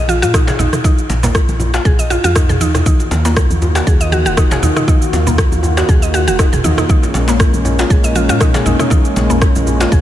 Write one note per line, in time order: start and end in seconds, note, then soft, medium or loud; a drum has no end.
0.00 0.24 A#1 loud
0.08 0.21 F4 loud
0.08 high conga medium
0.08 shaker soft
0.22 0.53 A#2 medium
0.22 0.33 F4 loud
0.22 muted conga medium
0.22 djembe tone medium
0.22 shaker medium
0.34 0.46 D#4 medium
0.34 kick loud
0.34 cross-stick loud
0.34 high conga medium
0.34 shaker medium
0.47 0.59 G#4 medium
0.47 mid tom medium
0.47 muted conga soft
0.47 djembe slap loud
0.47 shaker soft
0.59 0.69 A#1 medium
0.59 0.72 D#4 medium
0.59 djembe tone medium
0.59 low conga medium
0.59 shaker medium
0.73 cross-stick medium
0.73 mid tom medium
0.73 muted conga medium
0.73 shaker soft
0.84 0.97 D#4 medium
0.84 kick loud
0.84 high conga medium
0.84 djembe tone medium
0.84 shaker medium
0.98 shaker soft
1.10 1.42 A#1 medium
1.10 djembe slap medium
1.10 muted conga soft
1.10 shaker soft
1.23 1.29 A#3 medium
1.23 djembe slap medium
1.23 djembe tone medium
1.23 low conga medium
1.23 shaker medium
1.34 kick loud
1.34 cross-stick loud
1.34 muted conga soft
1.34 djembe bass medium
1.34 shaker soft
1.48 1.79 A#1 medium
1.48 high conga medium
1.48 djembe tone medium
1.48 shaker soft
1.60 muted conga medium
1.60 djembe bass loud
1.60 shaker soft
1.74 1.84 F4 medium
1.74 djembe slap loud
1.74 shaker soft
1.85 2.17 A#1 loud
1.85 1.98 G#4 medium
1.85 kick loud
1.85 mid tom medium
1.85 djembe tone medium
1.85 shaker soft
1.99 2.10 D#5 medium
1.99 muted conga soft
1.99 shaker medium
2.10 2.23 F4 loud
2.10 djembe tone medium
2.10 shaker soft
2.24 2.62 F2 medium
2.24 2.35 F4 loud
2.24 muted conga medium
2.24 shaker medium
2.36 2.48 D#4 medium
2.36 kick loud
2.36 cross-stick loud
2.36 shaker medium
2.49 2.60 G#4 medium
2.49 mid tom medium
2.49 muted conga soft
2.49 djembe tone medium
2.49 low conga medium
2.49 shaker soft
2.61 2.93 D#2 medium
2.61 2.74 D#4 medium
2.61 high conga loud
2.61 shaker medium
2.74 cross-stick medium
2.74 muted conga soft
2.74 djembe tone medium
2.74 low conga medium
2.74 shaker soft
2.86 6.86 D#3 medium
2.86 10.01 A#3 medium
2.86 2.98 D#4 medium
2.86 6.85 F4 medium
2.86 6.85 F#4 medium
2.86 kick loud
2.86 high conga loud
2.86 shaker medium
3.00 djembe tone medium
3.00 shaker medium
3.11 3.43 D#2 medium
3.11 djembe slap medium
3.11 muted conga medium
3.11 shaker soft
3.25 3.31 A#3 medium
3.25 djembe slap medium
3.25 djembe tone medium
3.25 shaker medium
3.36 kick loud
3.36 cross-stick loud
3.36 muted conga soft
3.36 djembe bass medium
3.36 shaker soft
3.50 3.81 D#2 medium
3.50 high conga medium
3.50 shaker soft
3.62 muted conga soft
3.62 djembe tone medium
3.62 djembe bass loud
3.62 shaker medium
3.75 3.86 F#4 medium
3.75 djembe slap loud
3.75 shaker medium
3.87 4.27 D#2 loud
3.87 3.99 G#4 medium
3.87 kick loud
3.87 djembe tone medium
3.87 shaker soft
4.01 4.12 D#5 medium
4.01 muted conga soft
4.01 shaker medium
4.12 4.25 F#4 loud
4.12 high conga medium
4.12 shaker medium
4.25 4.57 D#1 medium
4.25 4.36 F#4 loud
4.25 muted conga medium
4.25 djembe tone medium
4.25 shaker medium
4.37 4.50 D#4 medium
4.37 kick loud
4.37 cross-stick loud
4.37 high conga medium
4.37 shaker medium
4.51 4.62 G#4 medium
4.51 mid tom medium
4.51 muted conga soft
4.51 djembe slap loud
4.51 djembe tone medium
4.51 shaker medium
4.63 4.72 D#2 medium
4.63 4.75 D#4 medium
4.63 low conga medium
4.63 shaker medium
4.76 4.83 D#4 medium
4.76 cross-stick medium
4.76 mid tom medium
4.76 muted conga soft
4.76 shaker medium
4.88 5.00 D#4 medium
4.88 kick loud
4.88 high conga medium
4.88 djembe tone medium
4.88 shaker medium
5.02 shaker soft
5.13 5.45 D#2 medium
5.13 muted conga medium
5.13 djembe slap medium
5.13 djembe tone medium
5.13 shaker medium
5.27 5.33 A#3 medium
5.27 low conga medium
5.27 shaker medium
5.38 kick loud
5.38 cross-stick loud
5.38 muted conga soft
5.38 djembe bass medium
5.38 shaker medium
5.52 5.83 D#2 medium
5.52 high conga medium
5.52 djembe tone medium
5.52 shaker medium
5.63 muted conga medium
5.63 djembe bass medium
5.63 shaker medium
5.77 5.88 F#4 medium
5.77 djembe slap loud
5.77 djembe tone medium
5.77 shaker medium
5.89 6.29 D#2 loud
5.89 6.01 G#4 medium
5.89 kick loud
5.89 mid tom medium
5.89 shaker medium
6.02 6.13 D#5 medium
6.02 muted conga soft
6.02 shaker medium
6.14 6.26 F#4 loud
6.14 djembe tone medium
6.14 shaker medium
6.27 6.58 D#1 loud
6.27 6.38 F#4 loud
6.27 muted conga medium
6.27 shaker medium
6.39 6.51 D#4 medium
6.39 kick loud
6.39 cross-stick loud
6.39 djembe tone loud
6.39 shaker medium
6.53 6.64 G#4 medium
6.53 mid tom medium
6.53 muted conga soft
6.53 low conga medium
6.53 shaker medium
6.64 6.74 D#2 medium
6.64 6.77 D#4 medium
6.64 high conga loud
6.64 shaker medium
6.77 6.84 D#4 medium
6.77 cross-stick medium
6.77 muted conga medium
6.77 djembe tone medium
6.77 low conga medium
6.77 shaker medium
6.89 10.01 G#3 medium
6.89 10.01 C#4 medium
6.89 7.02 D#4 medium
6.89 kick loud
6.89 high conga loud
6.89 shaker medium
7.03 djembe tone loud
7.03 shaker medium
7.14 7.47 A#1 medium
7.14 djembe slap medium
7.14 muted conga medium
7.14 shaker medium
7.28 7.35 A#3 medium
7.28 djembe slap medium
7.28 shaker medium
7.39 kick loud
7.39 cross-stick loud
7.39 muted conga soft
7.39 djembe tone medium
7.39 djembe bass medium
7.39 shaker medium
7.53 7.84 A#1 medium
7.53 high conga medium
7.53 shaker medium
7.65 muted conga medium
7.65 djembe tone medium
7.65 djembe bass medium
7.65 shaker medium
7.79 7.89 F4 medium
7.79 djembe slap loud
7.79 shaker medium
7.90 8.31 A#1 loud
7.90 8.03 G#4 medium
7.90 kick loud
7.90 shaker medium
8.04 8.15 D#5 medium
8.04 muted conga soft
8.04 djembe tone medium
8.04 shaker medium
8.15 8.28 F4 medium
8.15 high conga medium
8.15 shaker medium
8.29 8.60 A#2 loud
8.29 8.40 F4 loud
8.29 muted conga medium
8.29 djembe tone loud
8.29 shaker medium
8.41 8.53 D#4 medium
8.41 kick loud
8.41 cross-stick loud
8.41 high conga medium
8.41 shaker medium
8.54 8.65 G#4 medium
8.54 mid tom medium
8.54 djembe slap loud
8.54 muted conga soft
8.54 shaker medium
8.66 8.75 A#1 medium
8.66 8.78 D#4 medium
8.66 djembe tone medium
8.66 low conga medium
8.66 shaker medium
8.79 8.86 D#4 medium
8.79 cross-stick medium
8.79 mid tom medium
8.79 muted conga soft
8.79 shaker medium
8.90 9.03 D#4 medium
8.90 kick loud
8.90 djembe tone loud
8.90 high conga loud
8.90 shaker medium
9.05 shaker medium
9.16 9.48 A#1 medium
9.16 djembe slap medium
9.16 muted conga soft
9.16 shaker medium
9.30 9.36 A#3 medium
9.30 djembe tone medium
9.30 low conga medium
9.30 shaker medium
9.42 kick loud
9.42 cross-stick loud
9.42 muted conga soft
9.42 djembe bass medium
9.42 shaker medium
9.55 9.86 A#1 medium
9.55 high conga medium
9.55 djembe tone medium
9.55 shaker medium
9.67 muted conga soft
9.67 djembe bass medium
9.67 shaker medium
9.80 9.91 F4 medium
9.80 djembe slap loud
9.80 shaker medium
9.92 10.01 A#1 loud
9.92 10.01 G#4 medium
9.92 kick loud
9.92 mid tom medium
9.92 djembe tone medium
9.92 shaker medium